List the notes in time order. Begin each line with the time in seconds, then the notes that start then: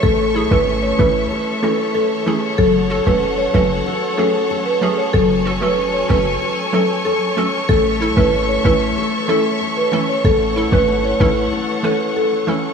Already playing: C#4 E4 A4 C#5 E5 C#6
0.03 A1 A3 A4
0.35 E4 G#4
0.51 G#1 E3 A3 C#4 E4 A4 B4
0.67 C#4
0.83 C#5
0.99 A1 E3 A3 C#4 E4 A4 B4
1.31 A4
1.62 E3 A3 C#4 E4 F#4 A4
1.94 A4
2.26 E3 A3 C#4 E4 G#4
2.58 F#1 F#3 A4 F#5 C#6
2.90 F#4 A4
3.06 E1 F#3 A3 C#4 F#4 A4 B4
3.22 C#4
3.38 C#5
3.53 F#1 F#3 A3 C#4 F#4 A4 B4
3.86 A4
4.17 F#3 A3 C#4 F#4 G#4 A4
4.50 A4
4.66 B4
4.81 F#3 A3 C#4 F#4 G#4
4.98 C#5
5.13 F#1 F#3 A4 G#5
5.45 F#4 A4
5.61 E1 F#3 A3 C#4 F#4 A4 B4
5.78 C#4
5.94 C#5
6.09 F#1 F#3 A3 C#4 F#4 A4 B4
6.42 A4
6.73 F#3 A3 C#4 F#4 A4
7.05 A4
7.37 F#3 A3 C#4 F#4 A4
7.69 A1 A3 A4 E5
8.01 E4 A4
8.16 G#1 E3 A3 C#4 E4 A4 B4
8.33 C#4
8.49 C#5
8.64 A1 E3 A3 C#4 E4 A4 B4
8.97 A4
9.28 E3 A3 C#4 E4 A4
9.61 A4
9.77 B4
9.92 E3 A3 C#4 E4 A4
10.09 C#5
10.24 A1 A3 A4 F#5
10.56 E4 A4
10.72 G#1 E3 A3 C#4 E4 B4
10.88 C#4
11.05 C#5
11.20 A1 E3 A3 C#4 E4 A4 B4
11.52 A4
11.83 E3 A3 C#4 E4 A4 B4
12.16 A4
12.47 E3 A3 C#4 E4 A4